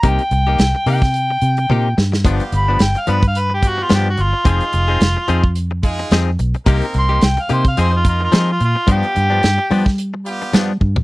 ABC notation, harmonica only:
X:1
M:4/4
L:1/16
Q:"Swing 16ths" 1/4=109
K:Cm
V:1 name="Harmonica"
g6 g8 z2 | z2 =b2 g f =B f B G ^F =F G ^F =F2 | F8 z8 | z2 c'2 g f c f c F F F F F F2 |
G8 z8 |]